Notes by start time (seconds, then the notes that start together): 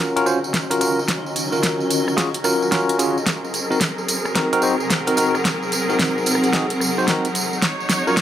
Already playing: D#3 F#3 C#4 F#4 G#4 D#5 F#5 A#5
0.00 C#4 F4 F#4 A#4
0.16 C#4 F4 F#4 A#4, closed hi-hat, tambourine
0.26 C#4 F4 F#4 C5, tambourine
0.44 tambourine
0.54 kick, snare, closed hi-hat, tambourine
0.71 C#4 F4 F#4 A#4, closed hi-hat, tambourine
0.81 C#4 F4 F#4 A#4, closed hi-hat, tambourine
0.99 tambourine
1.08 kick, snare, closed hi-hat, tambourine
1.26 tambourine
1.36 closed hi-hat, tambourine
1.52 C#4 F4 F#4 A#4, tambourine
1.63 kick, snare, closed hi-hat, tambourine
1.80 tambourine
1.91 closed hi-hat, tambourine
2.08 cross-stick, tambourine
2.17 C#4 F4 F#4 G#4, kick, snare, closed hi-hat, tambourine
2.34 closed hi-hat, tambourine
2.44 C#4 F4 F#4 A#4, cross-stick, tambourine
2.62 tambourine
2.72 C#4 F4 F#4 A#4, kick, snare, closed hi-hat, tambourine
2.89 closed hi-hat, tambourine
2.99 C#4 F4 F#4 G#4, closed hi-hat, tambourine
3.18 tambourine
3.26 F#3 C4 G#4 A#4, kick, snare, closed hi-hat, tambourine
3.38 G#4
3.44 tambourine
3.54 closed hi-hat, tambourine
3.71 C4 D#4 F#4 A#4 F#5, tambourine
3.81 kick, snare, closed hi-hat, tambourine
3.98 tambourine
4.08 closed hi-hat, tambourine
4.25 cross-stick, tambourine
4.35 C4 D#4 F#4 A#4, kick, snare, closed hi-hat, tambourine
4.53 C4 D#4 F#4 A#4, closed hi-hat, tambourine
4.62 C4 D#4 F#4 C5, tambourine
4.80 tambourine
4.90 kick, snare, closed hi-hat, tambourine
5.07 C4 D#4 F#4 A#4, closed hi-hat, tambourine
5.17 C4 D#4 F#4 A#4, closed hi-hat, tambourine
5.35 cross-stick, tambourine
5.45 kick, snare, closed hi-hat, tambourine
5.63 tambourine
5.72 closed hi-hat, tambourine
5.89 C4 D#4 F#4 A#4, tambourine
5.99 kick, snare, closed hi-hat, tambourine
6.18 tambourine
6.26 closed hi-hat, tambourine
6.35 cross-stick
6.44 closed hi-hat, tambourine
6.53 C4 D#4 F#4 G#4, kick, snare, closed hi-hat, tambourine
6.70 closed hi-hat, tambourine
6.80 cross-stick, tambourine
6.98 C4 D#4 F#4 C5, tambourine
7.08 C4 D#4 F#4 A#4, kick, snare, closed hi-hat, tambourine
7.25 closed hi-hat, tambourine
7.35 closed hi-hat, tambourine
7.53 tambourine
7.62 C#4 D#4 C#5, kick, snare, closed hi-hat, tambourine
7.80 F#4, tambourine
7.89 snare, closed hi-hat, tambourine
8.07 C#4 F4 F#4 A#4, tambourine
8.17 kick, snare, closed hi-hat, tambourine